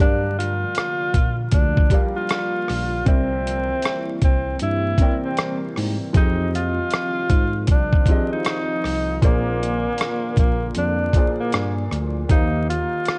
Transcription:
Already playing: D3 G3
0.00 G2 F3 G3 A#3 D4 F4 G4 A#4 D5 F5
0.38 F4, closed hi-hat
0.75 cross-stick, closed hi-hat
1.14 A#2, kick, closed hi-hat
1.52 D2 D4, kick, closed hi-hat
1.77 kick
1.90 G3 G4 A#4 D5 F5, kick, closed hi-hat
2.17 F4
2.29 cross-stick, closed hi-hat
2.68 A#1, cross-stick, open hi-hat
3.05 C2 C3 E3 A#3 C4 E4 A#4 D5 E5, kick, closed hi-hat
3.47 closed hi-hat
3.82 cross-stick, closed hi-hat
4.22 C2 C4, kick, closed hi-hat
4.59 G2 E4, closed hi-hat
4.98 C3 C4 A#4 D5, kick, closed hi-hat
5.02 G5
5.25 C4
5.37 cross-stick, closed hi-hat
5.76 G#2, cross-stick, open hi-hat
6.13 F2 D#3 F3 C4 D#4 F4 G4 G#4 D#5, kick, closed hi-hat
6.55 F4, closed hi-hat
6.90 cross-stick, closed hi-hat
7.29 G#2, kick, closed hi-hat
7.67 C2 D4, kick, closed hi-hat
7.93 kick
8.06 F3 C4, kick, closed hi-hat
8.10 G4 G#4 D#5
8.33 D#4
8.45 cross-stick, closed hi-hat
8.84 C2, cross-stick, open hi-hat
9.21 A#1 A#2 D3 A#3 G#4 C5 D5, kick, closed hi-hat
9.63 closed hi-hat
9.98 cross-stick, closed hi-hat
10.37 A#1 A#3, kick, closed hi-hat
10.75 F2 D4, closed hi-hat
11.13 A#2 A#3 G#4 C5, kick, closed hi-hat
11.18 D5
11.40 A#3
11.52 G2, cross-stick, closed hi-hat
11.91 D2, cross-stick, closed hi-hat
12.29 D#2 D#3 A#3 D#4 G4 C5 F5, kick, closed hi-hat
12.69 F4, closed hi-hat
13.05 cross-stick, closed hi-hat

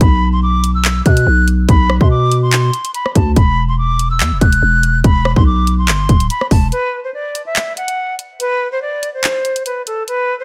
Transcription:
0.01 B1 B5, kick, closed hi-hat
0.33 C6
0.43 D6
0.64 closed hi-hat
0.75 E6
0.85 clap, closed hi-hat
1.06 B2 F#6, kick, closed hi-hat
1.17 closed hi-hat
1.27 B1
1.48 closed hi-hat
1.69 B1 B5, kick, closed hi-hat
1.90 cross-stick
2.01 B2 C6, kick
2.11 D6
2.32 closed hi-hat
2.43 C6
2.53 clap, closed hi-hat
2.73 closed hi-hat
2.85 closed hi-hat
2.94 B5, closed hi-hat
3.06 cross-stick
3.15 D2 A5, kick, closed hi-hat
3.36 E1 B5, kick, closed hi-hat
3.69 C6
3.78 D6
3.99 closed hi-hat
4.11 E6
4.20 E2, clap, closed hi-hat
4.31 E1
4.41 E1 F#6, kick, closed hi-hat
4.52 closed hi-hat
4.62 E1
4.83 closed hi-hat
5.04 E1 B5, kick, closed hi-hat
5.25 cross-stick
5.36 B1 C6, kick
5.46 D6
5.67 closed hi-hat
5.78 C6
5.88 G1, clap, closed hi-hat
6.09 D1, kick, closed hi-hat
6.20 closed hi-hat
6.30 B5, closed hi-hat
6.41 cross-stick
6.51 E1 A5, kick, open hi-hat
6.72 B4, closed hi-hat
7.04 C5
7.14 D5
7.35 closed hi-hat
7.46 E5
7.56 clap, closed hi-hat
7.77 F#5, closed hi-hat
7.88 closed hi-hat
8.19 closed hi-hat
8.40 B4, closed hi-hat
8.72 C5
8.82 D5
9.03 closed hi-hat
9.14 C5
9.24 clap, closed hi-hat
9.45 closed hi-hat
9.56 closed hi-hat
9.66 B4, closed hi-hat
9.87 A4, closed hi-hat
10.08 B4, closed hi-hat
10.40 C5

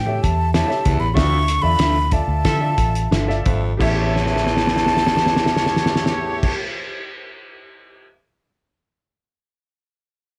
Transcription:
Already playing: A2 G5
0.06 G4 A4 C#5 E5
0.23 E2 A5, kick, closed hi-hat
0.54 E4 G4 C#5 E5 A5, snare, closed hi-hat
0.67 G4 A4 C#5 E5, snare
0.85 C#2 E2, kick, closed hi-hat
1.00 A1 B5
1.14 D2 D3 F4 A4 D5 E5 C#6, kick, snare, closed hi-hat
1.48 closed hi-hat
1.62 E2 F4 A4 D5 E5 B5
1.79 D2 D4 F4 A4 E5, snare, closed hi-hat
2.11 F4 A4 D5 E5 A5, kick, closed hi-hat
2.28 D2
2.45 D3 F4 A4 E5, kick, snare, closed hi-hat
2.60 F4 A4 D5 E5
2.78 A1, kick, closed hi-hat
2.95 closed hi-hat
3.11 G1 D4 F4 A4 E5, snare, closed hi-hat
3.28 F4 A4 D5 E5, snare
3.45 G#1 F2, kick, closed hi-hat
3.77 A1 E2 A3 E4 G4 A4 C#5 E5 A5, kick, crash
3.81 G4 C#5 E5
4.16 snare
4.26 snare
4.36 snare
4.47 snare
4.57 snare
4.67 snare
4.76 snare
4.87 snare
4.97 snare
5.07 snare
5.17 snare
5.26 snare
5.36 snare
5.46 snare
5.57 snare
5.66 snare
5.76 snare
5.86 snare
5.96 snare
6.06 snare
6.43 kick, crash

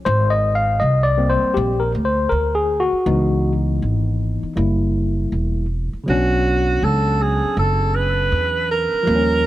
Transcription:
0.05 G#1 C5
0.30 D#5
0.55 F5
0.80 C2 D#5
1.03 D5
1.18 G3 A#3 C4
1.30 C5
1.42 muted upright bass stroke
1.54 A#1 G4
1.80 A#4
1.95 D2
2.05 C5
2.29 D2 A#4
2.55 G#4
2.80 F#4
2.92 muted upright bass stroke
3.06 C#2 E3 B3 D#4
3.82 G#1
4.43 muted upright bass stroke
4.56 F#1 G3 A#3 E4
5.32 E1
5.93 muted upright bass stroke
6.04 C#3 F#3 B3
6.08 B1 C#4 D4 F#4
6.82 C#2 A4
7.21 G#4
7.43 muted upright bass stroke
7.57 F#1 A4
7.95 B4
8.32 E2
8.71 A#4
8.93 muted upright bass stroke
9.03 F3 G3 A#3
9.07 D#2 C4
9.15 C#4

